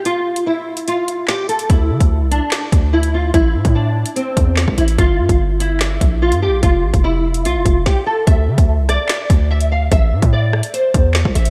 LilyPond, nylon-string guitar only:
\new Staff \with { instrumentName = "Nylon-string guitar" } { \time 4/4 \key c \mixolydian \tempo 4 = 146 f'4 e'4 f'4 g'8 a'8 | e'4. d'4. e'8 f'8 | e'4 d'4 c'4. e'8 | f'4. e'4. f'8 g'8 |
f'4 e'4 f'4 g'8 a'8 | e''4. d''4. e''8 f''8 | e''4 d''4 c''4. e''8 | }